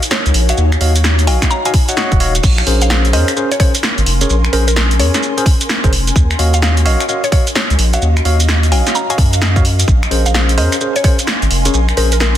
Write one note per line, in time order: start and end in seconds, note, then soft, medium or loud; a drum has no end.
0.00 3.10 D#4 medium
0.00 2.44 F#4 medium
0.00 0.23 A#4 medium
0.00 2.44 C#5 medium
0.00 3.79 F5 medium
0.00 0.23 G#5 medium
0.00 closed hi-hat medium
0.00 shaker medium
0.11 0.30 C#5 medium
0.11 snare loud
0.11 shaker medium
0.26 0.32 C#2 medium
0.26 closed hi-hat soft
0.26 shaker soft
0.34 0.53 A#1 medium
0.34 open hi-hat loud
0.49 0.63 F#4 medium
0.49 0.63 C#5 medium
0.49 0.63 D#5 medium
0.49 0.64 F5 loud
0.49 0.63 F#5 medium
0.49 closed hi-hat medium
0.49 shaker medium
0.57 0.76 D#2 loud
0.57 shaker medium
0.72 finger snap medium
0.72 closed hi-hat soft
0.72 shaker soft
0.81 1.29 D#2 medium
0.81 0.93 F#4 medium
0.81 0.93 C#5 medium
0.81 0.93 D#5 medium
0.81 0.93 F5 loud
0.81 open hi-hat loud
0.96 closed hi-hat medium
0.96 shaker medium
1.04 snare loud
1.04 shaker medium
1.19 closed hi-hat medium
1.19 shaker soft
1.27 1.38 A#1 loud
1.27 1.62 F#4 medium
1.27 1.62 C#5 medium
1.27 1.62 D#5 medium
1.27 1.62 F5 medium
1.27 1.46 G#5 loud
1.27 open hi-hat loud
1.42 finger snap medium
1.42 kick medium
1.42 snare medium
1.42 closed hi-hat medium
1.42 shaker medium
1.50 1.62 A#5 medium
1.50 shaker medium
1.65 1.73 F#4 medium
1.65 1.73 C#5 medium
1.65 1.73 D#5 medium
1.65 1.73 F5 loud
1.65 2.12 G#5 medium
1.65 closed hi-hat medium
1.65 shaker soft
1.74 kick loud
1.74 open hi-hat loud
1.89 1.95 F#4 medium
1.89 1.95 C#5 medium
1.89 1.95 D#5 medium
1.89 1.95 F#5 medium
1.89 closed hi-hat medium
1.89 shaker medium
1.97 2.18 F#4 loud
1.97 2.18 C#5 medium
1.97 2.18 D#5 medium
1.97 2.18 F#5 loud
1.97 snare loud
1.97 shaker medium
2.12 2.40 D#1 loud
2.12 kick loud
2.12 closed hi-hat soft
2.12 shaker soft
2.20 2.33 F#4 medium
2.20 2.33 C#5 medium
2.20 2.33 D#5 medium
2.20 2.33 F5 loud
2.20 open hi-hat loud
2.35 closed hi-hat medium
2.35 shaker medium
2.43 2.62 A#1 loud
2.43 12.38 C#4 medium
2.43 kick loud
2.43 crash medium
2.43 shaker soft
2.58 finger snap medium
2.58 closed hi-hat soft
2.58 shaker soft
2.67 3.15 A#1 medium
2.67 3.11 C#4 medium
2.67 3.11 G#4 medium
2.67 3.11 A#4 medium
2.67 3.11 C5 medium
2.67 open hi-hat loud
2.76 7.12 A#4 medium
2.82 2.87 F5 medium
2.82 closed hi-hat medium
2.82 shaker medium
2.90 3.00 F5 medium
2.90 snare loud
2.90 shaker soft
3.05 7.62 G#5 medium
3.05 6.81 C6 medium
3.05 closed hi-hat medium
3.05 shaker soft
3.13 3.24 F2 loud
3.13 3.31 C#4 loud
3.13 3.31 G#4 medium
3.13 3.31 A#4 medium
3.13 3.31 C5 loud
3.13 3.32 D#5 loud
3.13 open hi-hat loud
3.28 finger snap medium
3.28 closed hi-hat medium
3.28 shaker medium
3.37 3.49 C#4 medium
3.37 3.49 G#4 medium
3.37 3.49 A#4 medium
3.37 3.49 C5 medium
3.37 shaker medium
3.52 3.57 C#5 medium
3.52 closed hi-hat medium
3.52 shaker soft
3.60 3.73 C#4 medium
3.60 3.73 G#4 medium
3.60 3.73 A#4 medium
3.60 3.73 C5 medium
3.60 3.69 C#5 medium
3.60 kick loud
3.60 open hi-hat loud
3.75 closed hi-hat medium
3.75 shaker medium
3.83 snare loud
3.83 shaker medium
3.98 4.04 G#1 medium
3.98 closed hi-hat soft
3.98 shaker soft
4.06 4.25 F1 medium
4.06 open hi-hat loud
4.21 4.35 C#4 medium
4.21 4.35 G#4 medium
4.21 4.35 A#4 medium
4.21 4.35 C#5 medium
4.21 closed hi-hat medium
4.21 shaker medium
4.30 4.48 A#1 loud
4.30 shaker soft
4.45 finger snap medium
4.45 closed hi-hat soft
4.45 shaker soft
4.53 5.01 A#1 medium
4.53 4.66 C#4 medium
4.53 4.66 G#4 medium
4.53 4.65 A#4 loud
4.53 4.66 A#4 medium
4.53 4.65 C5 loud
4.53 open hi-hat loud
4.68 4.73 A#4 medium
4.68 closed hi-hat medium
4.68 shaker medium
4.76 4.86 A#4 medium
4.76 snare loud
4.76 shaker medium
4.91 closed hi-hat medium
4.91 shaker soft
4.99 5.10 F2 loud
4.99 5.34 C#4 medium
4.99 5.34 G#4 medium
4.99 5.34 A#4 medium
4.99 5.34 C#5 medium
4.99 5.38 C#5 loud
4.99 open hi-hat loud
5.14 snare medium
5.14 closed hi-hat medium
5.14 shaker medium
5.23 shaker soft
5.37 5.45 C#4 medium
5.37 5.45 G#4 medium
5.37 5.45 A#4 medium
5.37 5.45 C5 loud
5.37 closed hi-hat medium
5.37 shaker soft
5.46 kick loud
5.46 open hi-hat loud
5.61 closed hi-hat medium
5.61 shaker medium
5.69 snare loud
5.69 shaker medium
5.84 5.90 G#1 loud
5.84 5.91 C#4 medium
5.84 5.91 G#4 medium
5.84 5.91 A#4 medium
5.84 5.91 C5 loud
5.84 kick loud
5.84 closed hi-hat soft
5.84 shaker soft
5.92 6.11 F1 medium
5.92 open hi-hat loud
6.08 closed hi-hat medium
6.08 shaker medium
6.16 6.34 D#2 loud
6.16 kick loud
6.16 shaker medium
6.31 finger snap medium
6.31 closed hi-hat soft
6.31 shaker soft
6.39 6.87 D#2 medium
6.39 6.83 F#4 medium
6.39 9.88 F#4 medium
6.39 6.83 C#5 medium
6.39 6.83 D#5 medium
6.39 6.83 F5 medium
6.39 open hi-hat loud
6.54 6.59 F5 medium
6.54 closed hi-hat medium
6.54 shaker medium
6.62 6.72 F5 medium
6.62 snare loud
6.62 shaker medium
6.77 closed hi-hat medium
6.77 shaker soft
6.85 6.96 A#1 loud
6.85 7.03 F#4 loud
6.85 7.03 C#5 medium
6.85 7.03 D#5 medium
6.85 7.04 D#5 medium
6.85 7.03 F5 loud
6.85 open hi-hat loud
7.00 11.23 D#5 medium
7.00 finger snap medium
7.00 closed hi-hat medium
7.00 shaker medium
7.09 7.21 F#4 medium
7.09 7.21 C#5 medium
7.09 7.21 D#5 medium
7.09 7.21 F5 loud
7.09 shaker medium
7.24 7.29 C#5 medium
7.24 closed hi-hat medium
7.24 shaker soft
7.32 7.45 F#4 medium
7.32 7.42 C#5 medium
7.32 7.45 C#5 medium
7.32 7.45 D#5 medium
7.32 7.45 F5 medium
7.32 kick loud
7.32 open hi-hat loud
7.37 11.40 F5 medium
7.47 closed hi-hat medium
7.47 shaker medium
7.55 7.74 C#5 medium
7.55 snare loud
7.55 shaker medium
7.70 7.76 C#2 medium
7.70 closed hi-hat soft
7.70 shaker soft
7.79 7.97 A#1 medium
7.79 open hi-hat loud
7.93 8.07 F#4 medium
7.93 8.07 C#5 medium
7.93 8.07 D#5 medium
7.93 8.08 F5 medium
7.93 8.07 F#5 medium
7.93 closed hi-hat medium
7.93 shaker medium
8.02 8.20 D#2 loud
8.02 shaker medium
8.17 finger snap medium
8.17 closed hi-hat soft
8.17 shaker soft
8.25 8.73 D#2 medium
8.25 8.38 F#4 medium
8.25 8.38 C#5 medium
8.25 8.38 D#5 medium
8.25 8.38 F5 loud
8.25 open hi-hat loud
8.40 closed hi-hat medium
8.40 shaker medium
8.49 snare loud
8.49 shaker medium
8.63 closed hi-hat medium
8.63 shaker soft
8.72 8.82 A#1 loud
8.72 9.06 F#4 medium
8.72 9.06 C#5 medium
8.72 9.06 D#5 medium
8.72 9.06 F5 medium
8.72 8.90 G#5 loud
8.72 open hi-hat loud
8.87 snare medium
8.87 closed hi-hat medium
8.87 shaker medium
8.95 9.07 A#5 loud
8.95 shaker medium
9.10 9.17 F#4 medium
9.10 9.17 C#5 medium
9.10 9.17 D#5 medium
9.10 9.17 F5 loud
9.10 9.56 G#5 medium
9.10 closed hi-hat medium
9.10 shaker soft
9.18 9.84 F#2 medium
9.18 kick loud
9.18 open hi-hat loud
9.33 closed hi-hat medium
9.33 shaker medium
9.42 snare loud
9.42 shaker medium
9.56 9.63 F#4 medium
9.56 9.63 C#5 medium
9.56 9.63 D#5 medium
9.56 9.63 F5 loud
9.56 kick loud
9.56 closed hi-hat soft
9.56 shaker soft
9.65 open hi-hat loud
9.80 closed hi-hat medium
9.80 shaker medium
9.88 10.06 A#1 loud
9.88 kick loud
9.88 shaker medium
10.03 12.38 A#4 medium
10.03 12.38 C6 medium
10.03 finger snap medium
10.03 closed hi-hat soft
10.03 shaker soft
10.08 10.59 A#1 medium
10.08 10.56 C#4 medium
10.08 10.56 G#4 medium
10.08 10.56 A#4 medium
10.08 10.56 C5 medium
10.08 12.38 G#5 medium
10.08 open hi-hat loud
10.26 10.31 F5 medium
10.26 closed hi-hat medium
10.26 shaker medium
10.34 10.44 F5 medium
10.34 snare loud
10.34 shaker medium
10.49 closed hi-hat medium
10.49 shaker soft
10.58 10.68 F2 loud
10.58 10.75 C#4 loud
10.58 10.75 G#4 medium
10.58 10.75 A#4 medium
10.58 10.75 C5 loud
10.58 10.76 D#5 medium
10.58 open hi-hat loud
10.72 finger snap soft
10.72 closed hi-hat medium
10.72 shaker medium
10.81 10.94 C#4 medium
10.81 10.94 G#4 medium
10.81 10.94 A#4 medium
10.81 10.93 C5 medium
10.81 shaker medium
10.96 11.01 C#5 medium
10.96 closed hi-hat medium
10.96 shaker soft
11.04 11.17 C#4 medium
11.04 11.17 G#4 medium
11.04 11.17 A#4 medium
11.04 11.17 C5 medium
11.04 11.14 C#5 medium
11.04 kick loud
11.04 open hi-hat loud
11.19 closed hi-hat medium
11.19 shaker medium
11.27 snare loud
11.27 shaker medium
11.42 11.48 G#1 medium
11.42 closed hi-hat soft
11.42 shaker soft
11.51 11.69 F1 medium
11.51 open hi-hat loud
11.65 11.79 C#4 medium
11.65 11.79 G#4 medium
11.65 11.79 A#4 medium
11.65 11.79 C#5 medium
11.65 closed hi-hat medium
11.65 shaker medium
11.74 11.92 A#1 loud
11.74 shaker medium
11.89 finger snap medium
11.89 closed hi-hat soft
11.89 shaker soft
11.97 12.38 A#1 medium
11.97 12.10 C#4 medium
11.97 12.10 G#4 medium
11.97 12.10 A#4 medium
11.97 12.09 A#4 medium
11.97 12.10 C5 loud
11.97 open hi-hat loud
12.12 12.18 A#4 medium
12.12 closed hi-hat medium
12.12 shaker medium
12.20 12.30 A#4 medium
12.20 snare loud
12.20 shaker medium